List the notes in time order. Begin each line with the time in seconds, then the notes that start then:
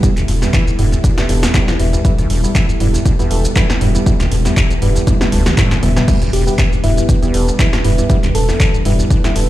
Already playing: G3 B3 E4 A4
0.03 B2 G3 B3 E4, kick, closed hi-hat, shaker
0.17 E1 E2, clap, closed hi-hat, shaker
0.28 E1 F2, open hi-hat
0.42 E2 G3 B3 E4, snare, shaker
0.53 E3, kick, clap, closed hi-hat, shaker
0.67 E1, shaker
0.79 E1 G2 G3 B3 E4, open hi-hat
0.92 E2, closed hi-hat, shaker
1.04 B2, kick, closed hi-hat, shaker
1.18 G3 B3 E4, snare, closed hi-hat, shaker
1.29 E1 F2 G3 B3 A4, open hi-hat
1.43 E2, snare, shaker
1.54 G3 B3 E4, kick, clap, closed hi-hat, shaker
1.68 E3, snare, shaker
1.79 E1 E2 G3 B3 E4, open hi-hat
1.93 E2 G3 B3 E4, closed hi-hat, shaker
2.05 E2 G3 B3 E4, kick, closed hi-hat, shaker
2.18 E1 E2, closed hi-hat, shaker
2.30 E1 E2, open hi-hat
2.44 G3 B3 E4, shaker
2.55 E3, kick, clap, closed hi-hat, shaker
2.69 E2, shaker
2.80 E1 G2 G3 B3 E4, open hi-hat
2.94 E2, closed hi-hat, shaker
3.06 B2, kick, closed hi-hat, shaker
3.19 E2 G3 B3 E4, closed hi-hat, shaker
3.31 E1 G3 B3 A4, open hi-hat
3.44 E1, closed hi-hat, shaker
3.56 E3 G3 B3 E4, kick, clap, closed hi-hat, shaker
3.70 snare, shaker
3.81 E1 G2 G3 B3 E4, open hi-hat
3.95 E2 G3 B3 E4, closed hi-hat, shaker
4.06 B2 G3 B3 E4, kick, closed hi-hat, shaker
4.20 E1 E2, snare, clap, closed hi-hat, shaker
4.32 E1 F2, open hi-hat
4.45 E2 G3 B3 E4, snare, closed hi-hat, shaker
4.57 E3, kick, clap, closed hi-hat, shaker
4.70 E1, closed hi-hat, shaker
4.82 E1 G2 G3 B3 E4, open hi-hat
4.96 E2, closed hi-hat, shaker
5.07 B2, kick, closed hi-hat, high tom, shaker
5.21 G3 B3 E4, snare, closed hi-hat, high tom, shaker
5.32 E1 D2 G3 B3 A4, open hi-hat
5.46 D2, snare, mid tom, shaker
5.57 A2 G3 B3 E4, kick, clap, closed hi-hat, mid tom, shaker
5.71 E2, snare, closed hi-hat, shaker
5.83 E1 E2 G3 B3 E4, mid tom, open hi-hat
5.96 B2 G3 B3 E4, snare, closed hi-hat, mid tom, shaker
6.08 E2 G3 B3 D4 E4 B4, kick, closed hi-hat, crash, shaker
6.22 E1 E2, closed hi-hat, shaker
6.33 E1 E2 G4, open hi-hat
6.47 G3 B3 E4 G4, shaker
6.58 E3, kick, clap, closed hi-hat, shaker
6.72 E2, shaker
6.83 E1 G2 G3 B3 E4, open hi-hat
6.97 E2 E4, closed hi-hat, shaker
7.09 B2, kick, closed hi-hat, shaker
7.22 E2 G3 B3 E4, closed hi-hat, shaker
7.34 E1 G3 B3 A4, open hi-hat
7.48 E1, closed hi-hat, shaker
7.59 E3 G3 B3 E4, kick, clap, closed hi-hat, shaker
7.73 snare, shaker
7.84 E1 G2 G3 B3 E4, open hi-hat
7.98 E2 G3 B3 E4, closed hi-hat, shaker
8.10 B2 G3 B3 E4, kick, closed hi-hat, shaker
8.23 E1 E2, clap, closed hi-hat, shaker
8.35 E1 F2 A4, open hi-hat
8.49 E2 G3 B3 E4, snare, shaker
8.60 E3, kick, clap, closed hi-hat, shaker
8.74 E1, shaker
8.85 E1 G2 G3 B3 E4, open hi-hat
8.99 E2, closed hi-hat, shaker
9.10 B2, kick, closed hi-hat, shaker
9.24 G3 B3 E4, snare, closed hi-hat, shaker
9.36 E1 F2 G3 B3 A4, open hi-hat